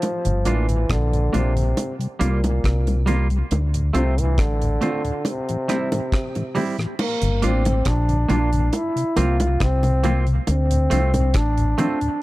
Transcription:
Already playing: trombone F3
0.02 closed hi-hat, high bongo
0.24 fingered electric bass G1, tonewheel organ G2 D3, closed hi-hat
0.45 fingered electric bass A1, trombone E3, tonewheel organ G3 A#3 F4, clean electric guitar A#3 D4 F4, closed hi-hat
0.68 tonewheel organ G2 D3, closed hi-hat
0.89 fingered electric bass A#1, trombone D3, kick, cross-stick, closed hi-hat
1.12 tonewheel organ G2 D3, closed hi-hat
1.32 fingered electric bass A#1, trombone C3, tonewheel organ G3 A#3 F4, clean electric guitar A#3 D4 F4, closed hi-hat, low bongo
1.55 tonewheel organ G2 D3, closed hi-hat
1.77 closed hi-hat, high bongo
1.99 tonewheel organ C3 G3, closed hi-hat
2.19 fingered electric bass C2, trombone A#2, clean electric guitar G3 A#3 F4, tonewheel organ A#3 C4 F4, closed hi-hat, high bongo
2.44 tonewheel organ C3 G3, closed hi-hat, high bongo
2.64 fingered electric bass C2, kick, cross-stick, closed hi-hat
2.87 tonewheel organ C3 G3, closed hi-hat, high bongo
3.06 clean electric guitar G3 A#3 F4, tonewheel organ A#3 C4 F4, closed hi-hat, low bongo
3.30 tonewheel organ C3 G3, closed hi-hat
3.51 fingered electric bass D2, closed hi-hat, high bongo
3.74 tonewheel organ D2 A2, closed hi-hat
3.93 fingered electric bass C2, trombone C3, clean electric guitar A3 C4 F4, tonewheel organ C4 D4 F4, closed hi-hat
4.17 tonewheel organ D2 A2, trombone E3, closed hi-hat
4.38 fingered electric bass A1, trombone D3, kick, cross-stick, closed hi-hat
4.62 tonewheel organ D2 A2, closed hi-hat
4.81 clean electric guitar A3 C4 F4, tonewheel organ C4 D4 F4, closed hi-hat, low bongo
5.05 tonewheel organ D2 A2, closed hi-hat
5.25 closed hi-hat, high bongo
5.29 trombone C3
5.49 tonewheel organ A2 E3, closed hi-hat
5.68 clean electric guitar G3 C4 E4, tonewheel organ A3 C4 G4, cross-stick, closed hi-hat, high bongo
5.92 tonewheel organ A2 E3, closed hi-hat, high bongo
6.12 kick, cross-stick, closed hi-hat
6.35 tonewheel organ A2 E3, closed hi-hat, high bongo
6.55 clean electric guitar G3 C4 E4, tonewheel organ A3 C4 G4, open hi-hat, low bongo
6.78 tonewheel organ A2 E3, cross-stick, closed hi-hat
6.99 trombone A#3, crash, high bongo
7.22 fingered electric bass G1, tonewheel organ G2 D3, closed hi-hat
7.42 fingered electric bass A1, tonewheel organ G3 A#3 F4, clean electric guitar A#3 D4 F4, trombone C4, closed hi-hat
7.65 tonewheel organ G2 D3, closed hi-hat, high bongo
7.85 fingered electric bass A#1, trombone D4, kick, cross-stick, closed hi-hat
8.09 tonewheel organ G2 D3, closed hi-hat
8.29 fingered electric bass A#1, tonewheel organ G3 A#3 F4, clean electric guitar A#3 D4 F4, trombone D4, closed hi-hat, low bongo
8.53 tonewheel organ G2 D3, closed hi-hat
8.73 trombone E4, closed hi-hat, high bongo
8.96 tonewheel organ C3, closed hi-hat
9.16 fingered electric bass C2, tonewheel organ F3 A#3 C4, clean electric guitar A#3 C4 F4, trombone F4, closed hi-hat, high bongo
9.40 tonewheel organ C3, closed hi-hat, high bongo
9.60 fingered electric bass C2, trombone C4, kick, cross-stick, closed hi-hat
9.83 tonewheel organ C3, closed hi-hat, high bongo
10.04 tonewheel organ F3 A#3 C4, clean electric guitar A#3 C4 F4, closed hi-hat, low bongo
10.27 tonewheel organ C3, closed hi-hat
10.47 fingered electric bass D2, trombone C4, closed hi-hat, high bongo
10.71 tonewheel organ D2 A2, closed hi-hat
10.90 fingered electric bass C2, tonewheel organ F3 C4 D4, clean electric guitar A3 C4 F4, closed hi-hat
11.14 tonewheel organ D2 A2, closed hi-hat, high bongo
11.34 fingered electric bass A1, trombone D4, kick, cross-stick, closed hi-hat
11.58 tonewheel organ D2 A2, closed hi-hat
11.78 tonewheel organ F3 C4 D4, clean electric guitar A3 C4 F4, trombone D4, closed hi-hat, low bongo
12.01 tonewheel organ D2 A2, closed hi-hat

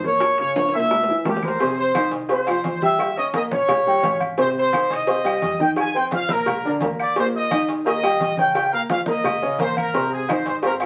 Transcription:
Already playing: upright bass G1
0.03 grand piano A#3 A#4, trumpet section C#5, high bongo, high conga
0.20 high bongo, high conga, high timbale, claves
0.38 grand piano C#3 C#4, trumpet section C#5, high bongo, high conga, high timbale
0.56 grand piano F3 F4, high bongo, high conga, high timbale
0.69 high timbale
0.74 upright bass C2, grand piano A#2 A#3, trumpet section E5, high conga
0.79 high timbale
0.91 high bongo, high conga, low timbale, claves
1.03 low timbale
1.08 upright bass E2, grand piano E3 E4, high bongo, high conga
1.25 upright bass F2, grand piano A#3 A#4, trumpet section G4, high bongo, low bongo, high conga, low timbale
1.36 low timbale
1.43 trumpet section A#4 C5, high conga, claves
1.48 low timbale
1.59 grand piano C3 C4 C5, trumpet section G#4, cowbell, low agogo
1.78 trumpet section C5, high conga
1.95 grand piano D#3 D#4 D#5, cowbell, high conga, low agogo, claves
2.12 upright bass C2, cowbell, high conga
2.29 grand piano C4 C5 C6, trumpet section C5, cowbell, high conga, low agogo
2.47 grand piano F3 F4 F5, cowbell, high conga, low agogo, claves
2.64 upright bass D#2, cowbell, high conga
2.82 grand piano G3 G4 G5, trumpet section E5, high conga
2.99 cowbell, high conga, low agogo, claves
3.17 grand piano C#4 C#5 C#6, trumpet section D#5, high conga
3.34 grand piano A#3 A#4 A#5, trumpet section D#5, cowbell, high conga, low agogo
3.51 upright bass A#1, grand piano C#4 C#5 C#6, trumpet section C#5, high conga, low agogo
3.69 cowbell, high conga, low conga, low agogo, claves
3.86 upright bass A#1, grand piano G3 G4 G5, high conga
4.03 upright bass G#1, grand piano C#4 C#5 C#6, cowbell, high conga, low timbale, low agogo
4.20 high conga, low agogo, claves
4.38 grand piano C3 C4 C5, trumpet section C5, cowbell, low agogo
4.55 trumpet section C5, high conga
4.73 grand piano D#3 D#4 D#5, cowbell, high conga, low agogo, claves
4.90 upright bass C2, trumpet section D#5, cowbell, high conga
5.07 grand piano C4 C5 C6, cowbell, high conga, low agogo
5.24 grand piano G3 G4 G5, cowbell, high conga, low agogo, claves
5.42 upright bass F2, cowbell, high conga
5.59 grand piano D#3 D#4 D#5, trumpet section G5, high conga
5.76 trumpet section G#5, cowbell, high conga, low agogo, claves
5.95 grand piano C4 C5 C6, trumpet section G5, high conga
6.11 grand piano F3 F4 F5, trumpet section F5, cowbell, high conga, low agogo
6.29 upright bass A#1, grand piano A#3 A#4 A#5, trumpet section A#4, high conga, low agogo
6.46 cowbell, high conga, low conga, low agogo, claves
6.64 grand piano D3 D4 D5, high conga
6.80 upright bass D#2, grand piano A#3 A#4 A#5, cowbell, high conga, low timbale, low agogo
6.99 trumpet section D5, low agogo, claves
7.16 grand piano A#2 A#3 A#4, trumpet section C5, cowbell, high conga, low agogo
7.33 trumpet section D#5, high conga
7.51 grand piano D#3 D#4 D#5, cowbell, high conga, low agogo, claves
7.68 upright bass D#2, cowbell, high conga
7.85 grand piano A#3 A#4 A#5, trumpet section D#5, cowbell, high conga, low agogo
8.03 grand piano G3 G4 G5, cowbell, high conga, low agogo, claves
8.20 upright bass A#1, cowbell, high conga
8.37 grand piano C#3 C#4 C#5, trumpet section G5, high conga
8.55 cowbell, high conga, low agogo, claves
8.72 grand piano A#3 A#4 A#5, trumpet section F5, high conga
8.90 grand piano F3 F4 F5, trumpet section F5, cowbell, high conga, low agogo
9.06 upright bass D#2, grand piano A#3 A#4 A#5, trumpet section D#5, high conga, low agogo
9.24 cowbell, high conga, low conga, low agogo, claves
9.41 upright bass A#1, grand piano C#3 C#4 C#5, high conga
9.58 upright bass G#1, grand piano A#3 A#4 A#5, trumpet section C5, cowbell, high conga, low agogo
9.77 trumpet section A#4, high conga, low agogo, claves
9.94 grand piano C3 C4 C5, cowbell, high conga, low agogo
10.12 trumpet section G#4, high conga
10.29 grand piano D#3 D#4 D#5, trumpet section C5, cowbell, high conga, low agogo, claves
10.46 upright bass G#2, trumpet section C5, cowbell, high conga
10.63 grand piano C4 C5 C6, trumpet section A#4, cowbell, high conga, low agogo
10.80 grand piano F3 F4, trumpet section A#4, cowbell, high conga, low agogo, claves

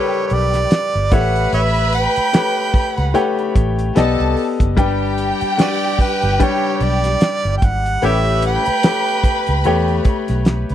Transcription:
Already playing: grand piano G3 G4 A4 A#4 B4, violin section G4 G5, harmonica C#5
0.13 closed hi-hat
0.27 harmonica C#5, closed hi-hat
0.31 fingered electric bass B1, harmonica D5
0.53 snare, closed hi-hat
0.71 snare, closed hi-hat
0.95 fingered electric bass G1
1.11 fingered electric bass A1, grand piano A3 G4 B4 C#5 E5, violin section B4 B5, harmonica F#5, kick, closed hi-hat
1.36 closed hi-hat
1.53 fingered electric bass A1, harmonica B4 C#5 E5, closed hi-hat
1.76 closed hi-hat
1.93 harmonica G5, closed hi-hat
2.16 muted fingered electric bass stroke, closed hi-hat
2.33 grand piano A3 G4 B4 C#5 G5, snare, closed hi-hat
2.74 muted fingered electric bass stroke, kick, open hi-hat
2.96 fingered electric bass C#2, harmonica F#5, closed hi-hat
3.14 grand piano A3 G4 B4 C#5 G5, closed hi-hat
3.39 closed hi-hat
3.56 fingered electric bass A1, kick, closed hi-hat
3.79 closed hi-hat
3.95 fingered electric bass B1, grand piano B3 G4 A4 D5 D#5, violin section A4 A5, snare, closed hi-hat
4.20 fingered electric bass C2, closed hi-hat
4.37 open hi-hat
4.60 fingered electric bass F#1, kick, closed hi-hat
4.77 fingered electric bass G1, grand piano G3 D4 B4 G5, violin section G4 G5, kick, closed hi-hat
5.18 closed hi-hat
5.41 muted fingered electric bass stroke, closed hi-hat
5.58 grand piano G3 D4 B4 G5, harmonica F#4 B4 D5, snare, closed hi-hat
5.99 harmonica B4, muted fingered electric bass stroke, kick, open hi-hat
6.22 fingered electric bass G1, closed hi-hat
6.40 grand piano G3 D4 B4 G5, harmonica C#5, kick, closed hi-hat
6.76 harmonica C#5
6.81 fingered electric bass B1, harmonica D5, closed hi-hat
7.04 snare, closed hi-hat
7.21 snare, closed hi-hat
7.45 fingered electric bass G1, closed hi-hat
7.58 harmonica G5
7.62 fingered electric bass G#1, harmonica F#5, kick, closed hi-hat
7.86 closed hi-hat
8.02 fingered electric bass A1, horn section G3 C#4 E4 G4, grand piano A3 G4 B4 C#5 G5, violin section B4 B5, harmonica E5, closed hi-hat
8.25 closed hi-hat
8.42 closed hi-hat
8.47 harmonica G5
8.65 muted fingered electric bass stroke, closed hi-hat
8.83 grand piano A3 G4 B4 C#5 G5, snare, closed hi-hat
9.24 muted fingered electric bass stroke, kick, closed hi-hat
9.47 fingered electric bass C#2, closed hi-hat
9.64 fingered electric bass E2, grand piano A3 G4 B4 C#5 G5, closed hi-hat
9.88 closed hi-hat
10.05 kick, closed hi-hat
10.28 fingered electric bass B1, snare, closed hi-hat
10.45 snare, closed hi-hat
10.69 fingered electric bass C#2, violin section B3 B4, closed hi-hat

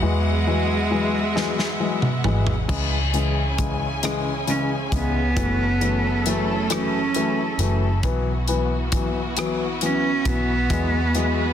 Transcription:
Already playing: string section B3 F#5
0.02 fingered electric bass E2, grand piano E3 F#3 G#3, cello G#3, string section G#4 E5
0.47 grand piano E3 F#3 G#3
0.91 grand piano E3 F#3 G#3
1.35 grand piano E3 F#3 G#3, snare
1.59 snare
1.80 grand piano E3 F#3 G#3
2.02 mid tom
2.24 fingered electric bass G#1, grand piano E3 F#3 G#3, mid tom
2.47 floor tom
2.68 fingered electric bass C#2, grand piano C#3 E3 G#3, string section C#3 C#4 E4 G#4 G#5, kick, crash
3.13 grand piano C#3 E3 G#3, closed hi-hat
3.58 grand piano C#3 E3 G#3, kick, closed hi-hat
4.03 grand piano C#3 E3 G#3, cross-stick, closed hi-hat
4.47 grand piano C#3 E3 G#3, cello C#4, closed hi-hat
4.92 fingered electric bass C#2, grand piano C#3 E3 G#3, cello B3, kick, closed hi-hat
5.36 fingered electric bass F#1, grand piano E3 F#3 A3, string section F#3 E4 A4, kick, closed hi-hat
5.81 grand piano E3 F#3 A3, closed hi-hat
6.26 grand piano E3 F#3 A3, cello A3, closed hi-hat
6.70 grand piano E3 F#3 A3, cello C#4, cross-stick, closed hi-hat
7.14 grand piano E3 F#3 A3, closed hi-hat
7.58 fingered electric bass F#1, grand piano E3 F#3 A3, closed hi-hat
8.03 fingered electric bass B1, grand piano E3 F#3 B3, string section B3 E4 F#4, kick, closed hi-hat
8.48 grand piano E3 F#3 B3, closed hi-hat
8.92 grand piano E3 F#3 B3, kick, closed hi-hat
9.37 grand piano E3 F#3 B3, cross-stick, closed hi-hat
9.81 grand piano E3 F#3 B3, cello C#4, closed hi-hat
10.25 fingered electric bass B1, grand piano E3 F#3 B3, cello B3, kick, closed hi-hat
10.70 fingered electric bass E2, string section E3 G#4 B4, grand piano E3 F#3 G#3, kick, closed hi-hat
11.15 grand piano E3 F#3 G#3, cross-stick, closed hi-hat

